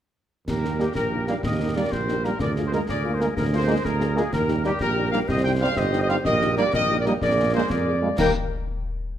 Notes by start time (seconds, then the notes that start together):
0.47 D#2 G4 A#4, concert bass drum, snare, crash
0.64 A#3 D#4 G4, snare
0.79 G3 A#3 D#4 G4, snare
0.95 A#1 G4 A#4, concert bass drum, snare
1.12 A#3 D#4 G4
1.27 G3 A#3 D#4 G4 F5, snare
1.43 D#2 G4 A#4 D#5, concert bass drum, snare
1.60 A#3 D#4 G4
1.75 G3 A#3 D#4 G4 D5
1.91 A#1 C5, concert bass drum, snare
2.08 A#3 D#4 G4, snare
2.24 G3 A#3 D#4 G4 A#4, snare
2.39 D2 G#4 A#4 D5, concert bass drum, snare
2.56 A#3 F4 G#4, snare
2.66 C5
2.71 G#3 A#3 F4 G#4 A#4, snare
2.88 D2 G#4 A#4 D5, concert bass drum, snare
3.04 A#3 F4 G#4
3.14 C5
3.20 G#3 A#3 F4 G#4 A#4, snare
3.36 D2 G#4 A#4, concert bass drum, snare
3.52 A#3 F4 G#4 C5
3.66 G#3 A#3 F4 G#4
3.84 D2 G#4 A#4, concert bass drum, snare
4.00 A#3 F4 G#4, snare
4.16 G#3 A#3 F4 G#4, snare
4.32 D#2 G4 A#4, concert bass drum, snare, crash
4.48 G3 D#4 G4, snare
4.64 G3 A#3 D#4 G4, snare
4.79 A#1 G4 A#4, concert bass drum, snare
4.96 G3 D#4 G4
5.11 G3 A#3 D#4 G4 F5, snare
5.28 C2 G4 C5 D#5, concert bass drum, snare
5.44 G3 D#4 G4 G5
5.61 G3 C4 D#4 G4 F5
5.76 G1 G4 C5 D#5, concert bass drum, snare
5.93 G3 D#4 G4, snare
6.01 D#5
6.08 G3 C4 D#4 G4 F5, snare
6.25 A#1 G4 A#4 D#5, concert bass drum, snare
6.41 A#3 D#4 G4, snare
6.57 G3 A#3 D#4 G4 D5, snare
6.73 A#1 G4 A#4 D#5, concert bass drum, snare
6.89 A#3 D#4 G4
7.00 D5
7.05 G3 A#3 D#4 G4 D#5, snare
7.22 A#1 G#4 A#4 D5, concert bass drum, snare
7.37 A#3 F4 G#4
7.54 G#3 A#3 F4 G#4 C5
7.70 F2 G#4 A#4 D5, concert bass drum, snare
7.86 A#3 F4 G#4
8.02 G#3 A#3 F4 G#4
8.18 D#2 G3 A#3 D#4 G4 A#4 G5, concert bass drum, snare, crash